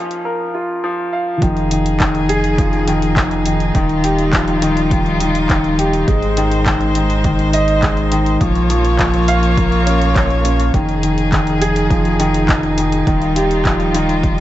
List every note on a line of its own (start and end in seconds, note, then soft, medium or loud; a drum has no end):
0.00 0.25 A#2 medium
0.00 0.25 F3 medium
0.00 0.84 F3 loud
0.00 0.25 C#4 medium
0.00 1.13 F5 medium
0.11 closed hi-hat soft
0.25 0.53 A#4 medium
0.54 0.71 F4 medium
0.84 1.11 F3 loud
1.13 1.29 F5 medium
1.42 3.72 F1 medium
1.42 1.70 D#3 medium
1.42 3.73 F3 medium
1.42 8.37 D#4 medium
1.42 3.73 G#4 medium
1.42 kick loud
1.42 closed hi-hat soft
1.57 closed hi-hat soft
1.71 1.99 D#3 medium
1.71 closed hi-hat medium
1.86 closed hi-hat soft
2.00 2.28 D#3 medium
2.00 kick loud
2.00 clap loud
2.00 closed hi-hat soft
2.15 closed hi-hat soft
2.29 2.57 G#4 loud
2.29 closed hi-hat medium
2.44 closed hi-hat soft
2.58 2.86 F3 medium
2.58 kick loud
2.58 closed hi-hat soft
2.73 closed hi-hat soft
2.87 3.15 D#3 medium
2.87 closed hi-hat medium
3.02 closed hi-hat soft
3.17 kick loud
3.17 clap loud
3.17 closed hi-hat soft
3.31 closed hi-hat soft
3.46 3.73 D#3 medium
3.46 closed hi-hat medium
3.60 closed hi-hat soft
3.75 6.05 D#1 medium
3.75 4.03 D#3 loud
3.75 6.06 G3 medium
3.75 6.06 F4 medium
3.75 kick loud
3.75 closed hi-hat soft
3.89 closed hi-hat soft
4.04 4.32 G4 medium
4.04 closed hi-hat medium
4.19 closed hi-hat soft
4.33 4.61 F3 medium
4.33 kick loud
4.33 clap loud
4.33 closed hi-hat soft
4.48 closed hi-hat soft
4.62 4.90 D#3 medium
4.62 closed hi-hat medium
4.77 closed hi-hat soft
4.91 5.19 D#3 medium
4.91 kick loud
4.91 closed hi-hat soft
5.06 closed hi-hat soft
5.20 5.48 D#3 medium
5.20 closed hi-hat medium
5.35 closed hi-hat soft
5.50 5.78 D#3 medium
5.50 kick loud
5.50 clap medium
5.50 closed hi-hat soft
5.64 closed hi-hat soft
5.79 6.07 G4 medium
5.79 closed hi-hat medium
5.93 closed hi-hat soft
6.08 8.38 G#1 medium
6.08 6.36 G#3 medium
6.08 8.39 G#3 medium
6.08 8.39 C5 medium
6.08 kick loud
6.08 closed hi-hat soft
6.22 closed hi-hat soft
6.37 6.65 D#3 loud
6.37 closed hi-hat medium
6.51 closed hi-hat soft
6.66 6.94 D#3 medium
6.66 kick loud
6.66 clap loud
6.66 closed hi-hat soft
6.81 closed hi-hat soft
6.95 7.23 D#3 medium
6.95 closed hi-hat medium
7.10 closed hi-hat soft
7.24 7.52 D#3 medium
7.24 kick loud
7.24 closed hi-hat soft
7.39 closed hi-hat soft
7.53 7.81 D#5 loud
7.53 closed hi-hat medium
7.68 closed hi-hat soft
7.83 8.10 G#3 medium
7.83 kick loud
7.83 clap medium
7.83 closed hi-hat soft
7.97 closed hi-hat soft
8.12 8.40 D#3 medium
8.12 closed hi-hat medium
8.26 closed hi-hat soft
8.41 10.71 A#1 medium
8.41 8.69 F3 medium
8.41 10.72 A#3 medium
8.41 10.72 F4 medium
8.41 10.72 C#5 medium
8.41 kick loud
8.41 closed hi-hat soft
8.55 closed hi-hat soft
8.70 8.98 F3 medium
8.70 closed hi-hat medium
8.85 closed hi-hat soft
8.99 9.27 F3 medium
8.99 kick loud
8.99 clap medium
8.99 closed hi-hat soft
9.14 closed hi-hat soft
9.28 9.56 F5 loud
9.28 closed hi-hat medium
9.43 closed hi-hat soft
9.57 9.85 A#3 medium
9.57 kick loud
9.57 closed hi-hat soft
9.72 closed hi-hat soft
9.87 10.14 C#4 medium
9.87 closed hi-hat medium
10.01 closed hi-hat soft
10.15 10.32 C#5 medium
10.15 kick loud
10.15 clap medium
10.15 closed hi-hat soft
10.30 closed hi-hat soft
10.45 10.61 C#4 medium
10.45 closed hi-hat medium
10.60 closed hi-hat soft
10.74 13.04 F1 medium
10.74 11.02 D#3 medium
10.74 13.05 F3 medium
10.74 14.40 D#4 medium
10.74 13.05 G#4 medium
10.74 kick loud
10.74 closed hi-hat soft
10.89 closed hi-hat soft
11.03 11.31 D#3 medium
11.03 closed hi-hat medium
11.18 closed hi-hat soft
11.32 11.60 D#3 loud
11.32 kick loud
11.32 clap medium
11.32 closed hi-hat soft
11.47 closed hi-hat soft
11.61 11.89 G#4 loud
11.61 closed hi-hat medium
11.76 closed hi-hat soft
11.90 12.18 F3 medium
11.90 kick loud
11.90 closed hi-hat soft
12.05 closed hi-hat soft
12.20 12.47 D#3 loud
12.20 closed hi-hat medium
12.34 closed hi-hat soft
12.49 12.76 D#3 medium
12.49 kick loud
12.49 clap loud
12.49 closed hi-hat soft
12.63 closed hi-hat soft
12.78 13.05 D#3 medium
12.78 closed hi-hat medium
12.92 closed hi-hat soft
13.07 14.40 D#1 medium
13.07 13.35 D#3 loud
13.07 14.40 G3 medium
13.07 14.40 F4 medium
13.07 kick loud
13.07 closed hi-hat soft
13.22 closed hi-hat soft
13.36 13.64 G4 loud
13.36 closed hi-hat medium
13.51 closed hi-hat soft
13.65 13.93 F3 medium
13.65 kick loud
13.65 clap medium
13.65 closed hi-hat soft
13.80 closed hi-hat soft
13.94 14.22 D#3 loud
13.94 closed hi-hat medium
14.09 closed hi-hat soft
14.23 14.40 D#3 medium
14.23 kick loud
14.23 closed hi-hat soft